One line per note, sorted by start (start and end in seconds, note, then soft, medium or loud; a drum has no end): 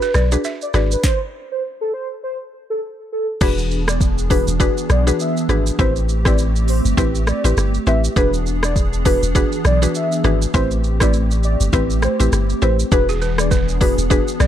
0.00 0.28 D4 medium
0.00 0.28 F#4 medium
0.00 0.28 G#4 medium
0.00 0.28 B4 loud
0.00 0.30 B4 loud
0.00 0.10 B4 medium
0.00 shaker medium
0.14 0.37 B1 medium
0.14 0.25 D5 medium
0.14 cross-stick loud
0.14 shaker medium
0.32 0.71 D4 medium
0.32 0.71 F#4 medium
0.32 0.71 G#4 medium
0.32 0.71 B4 medium
0.32 shaker medium
0.44 0.55 E5 medium
0.44 shaker medium
0.62 0.73 D5 medium
0.62 shaker medium
0.74 0.96 G#1 medium
0.74 1.02 D4 medium
0.74 1.02 F#4 medium
0.74 1.02 G#4 medium
0.74 1.02 B4 medium
0.74 0.85 D5 medium
0.74 cross-stick medium
0.74 shaker soft
0.91 1.02 B4 medium
0.91 shaker medium
1.04 1.19 C5 loud
1.04 kick loud
1.04 snare medium
1.52 1.62 C5 medium
1.81 1.91 A4 medium
1.94 2.08 C5 medium
2.23 2.38 C5 medium
2.70 2.80 A4 medium
3.12 3.27 A4 medium
3.41 4.43 E1 loud
3.41 5.76 E3 medium
3.41 5.76 B3 medium
3.41 3.96 D4 medium
3.41 5.76 D4 medium
3.41 3.97 F#4 medium
3.41 5.76 G#4 medium
3.41 3.97 G#4 medium
3.41 3.97 B4 loud
3.41 3.56 B4 loud
3.41 kick loud
3.41 crash loud
3.41 shaker medium
3.58 shaker medium
3.71 shaker medium
3.88 3.99 D5 medium
3.88 cross-stick loud
3.88 shaker loud
4.01 kick loud
4.01 shaker medium
4.18 shaker medium
4.30 4.50 D4 medium
4.30 4.50 F#4 medium
4.30 4.50 G#4 medium
4.30 4.50 B4 medium
4.30 4.46 B4 medium
4.30 kick loud
4.30 open hi-hat medium
4.30 shaker medium
4.48 4.70 E1 loud
4.48 shaker loud
4.60 5.03 D4 medium
4.60 5.03 F#4 medium
4.60 5.03 G#4 medium
4.60 5.03 B4 loud
4.60 kick medium
4.60 shaker medium
4.77 shaker medium
4.90 5.12 B1 loud
4.90 5.05 D5 medium
4.90 cross-stick loud
4.90 shaker medium
5.07 5.46 D4 medium
5.07 5.46 F#4 medium
5.07 5.46 G#4 medium
5.07 5.46 B4 medium
5.07 shaker loud
5.20 5.64 E5 medium
5.20 shaker medium
5.37 shaker medium
5.49 5.71 G#1 medium
5.49 5.77 D4 medium
5.49 5.77 F#4 medium
5.49 5.77 G#4 medium
5.49 5.77 B4 medium
5.49 cross-stick medium
5.49 shaker soft
5.67 shaker medium
5.79 6.81 A1 loud
5.79 8.14 A3 medium
5.79 8.14 C4 medium
5.79 6.22 C4 loud
5.79 6.22 E4 medium
5.79 8.14 G4 medium
5.79 6.22 G4 medium
5.79 6.22 B4 loud
5.79 5.94 C5 loud
5.79 kick loud
5.79 shaker medium
5.96 shaker medium
6.09 shaker medium
6.25 6.41 C4 medium
6.25 6.41 E4 medium
6.25 6.42 G4 medium
6.25 6.42 B4 medium
6.25 6.37 D5 medium
6.25 kick loud
6.25 cross-stick loud
6.25 shaker loud
6.38 shaker medium
6.56 shaker medium
6.68 6.83 C5 medium
6.68 open hi-hat medium
6.68 shaker medium
6.85 6.94 G1 medium
6.85 shaker loud
6.97 7.32 A1 loud
6.97 7.40 C4 medium
6.97 7.40 E4 medium
6.97 7.40 G4 medium
6.97 7.41 B4 loud
6.97 kick medium
6.97 shaker medium
7.15 shaker medium
7.27 7.43 D5 medium
7.27 cross-stick loud
7.27 shaker medium
7.44 7.54 A1 medium
7.44 7.60 C4 medium
7.44 7.60 E4 medium
7.44 7.60 G4 medium
7.44 7.60 B4 medium
7.44 shaker medium
7.57 7.79 G1 medium
7.57 cross-stick medium
7.57 shaker medium
7.74 shaker medium
7.87 8.09 A1 medium
7.87 8.06 C4 medium
7.87 8.06 E4 medium
7.87 8.06 G4 medium
7.87 8.06 B4 medium
7.87 8.02 E5 medium
7.87 shaker soft
8.04 shaker medium
8.16 9.19 E1 loud
8.16 10.52 E3 medium
8.16 10.52 B3 medium
8.16 8.72 D4 loud
8.16 10.52 D4 medium
8.16 8.72 F#4 medium
8.16 8.72 G#4 medium
8.16 10.52 G#4 medium
8.16 8.72 B4 loud
8.16 8.32 B4 loud
8.16 kick loud
8.16 shaker medium
8.34 shaker medium
8.46 shaker medium
8.63 8.75 D5 medium
8.63 cross-stick loud
8.63 shaker loud
8.76 kick loud
8.76 shaker medium
8.93 shaker medium
9.05 9.25 D4 medium
9.05 9.25 F#4 medium
9.05 9.25 G#4 medium
9.05 9.25 B4 medium
9.05 9.21 B4 medium
9.05 kick loud
9.05 open hi-hat medium
9.05 shaker medium
9.23 9.45 E1 medium
9.23 shaker loud
9.35 9.78 D4 loud
9.35 9.78 F#4 medium
9.35 9.78 G#4 medium
9.35 9.78 B4 loud
9.35 kick medium
9.35 shaker medium
9.52 shaker medium
9.65 9.87 B1 medium
9.65 9.80 D5 medium
9.65 cross-stick loud
9.65 shaker medium
9.82 10.21 D4 medium
9.82 10.21 F#4 medium
9.82 10.21 G#4 medium
9.82 10.22 B4 medium
9.82 shaker loud
9.95 10.39 E5 medium
9.95 shaker medium
10.12 shaker medium
10.24 10.46 G#1 medium
10.24 10.52 D4 medium
10.24 10.52 F#4 medium
10.24 10.52 G#4 medium
10.24 10.52 B4 medium
10.24 cross-stick medium
10.24 shaker soft
10.42 shaker medium
10.54 11.56 A1 loud
10.54 12.89 A3 medium
10.54 10.97 C4 loud
10.54 12.89 C4 medium
10.54 10.97 E4 medium
10.54 12.89 G4 medium
10.54 10.97 G4 medium
10.54 10.97 B4 loud
10.54 10.69 C5 loud
10.54 kick loud
10.54 shaker medium
10.71 shaker medium
10.84 shaker medium
11.00 11.17 C4 medium
11.00 11.17 E4 medium
11.00 11.17 G4 medium
11.00 11.17 B4 medium
11.00 11.12 D5 medium
11.00 kick loud
11.00 cross-stick loud
11.00 shaker loud
11.13 shaker medium
11.31 shaker medium
11.43 11.59 D5 medium
11.43 shaker medium
11.60 11.70 G1 loud
11.60 shaker loud
11.73 12.08 A1 loud
11.73 12.16 C4 medium
11.73 12.16 E4 medium
11.73 12.16 G4 medium
11.73 12.16 B4 loud
11.73 kick loud
11.73 shaker medium
11.90 shaker medium
12.02 12.18 C5 medium
12.02 cross-stick loud
12.02 shaker medium
12.20 12.29 A1 medium
12.20 12.35 C4 medium
12.20 12.35 E4 medium
12.20 12.36 G4 medium
12.20 12.36 B4 medium
12.20 shaker loud
12.32 12.54 G1 loud
12.32 cross-stick medium
12.32 shaker medium
12.50 shaker medium
12.62 12.84 A1 medium
12.62 12.81 C4 medium
12.62 12.82 E4 medium
12.62 12.82 G4 medium
12.62 12.82 B4 medium
12.62 12.77 C5 medium
12.62 shaker soft
12.79 shaker medium
12.92 13.94 E1 loud
12.92 14.47 E3 medium
12.92 14.47 B3 medium
12.92 13.47 D4 loud
12.92 14.47 D4 medium
12.92 13.47 F#4 medium
12.92 14.47 G#4 medium
12.92 13.47 G#4 medium
12.92 13.47 B4 loud
12.92 13.07 B4 loud
12.92 kick loud
12.92 shaker medium
13.09 13.17 G#4 medium
13.09 shaker medium
13.22 13.32 B4 medium
13.22 shaker medium
13.38 13.50 D5 medium
13.38 cross-stick loud
13.38 shaker loud
13.51 13.69 B4 medium
13.51 kick medium
13.51 shaker medium
13.69 shaker medium
13.81 14.00 D4 medium
13.81 14.00 F#4 medium
13.81 14.00 G#4 medium
13.81 14.00 B4 medium
13.81 13.96 B4 medium
13.81 kick loud
13.81 open hi-hat medium
13.81 shaker medium
13.98 14.20 E1 medium
13.98 shaker loud
14.10 14.47 D4 medium
14.10 14.47 F#4 medium
14.10 14.47 G#4 medium
14.10 14.47 B4 loud
14.10 kick medium
14.10 shaker medium
14.28 shaker medium
14.40 14.47 B1 loud
14.40 14.47 D5 medium
14.40 cross-stick loud
14.40 shaker medium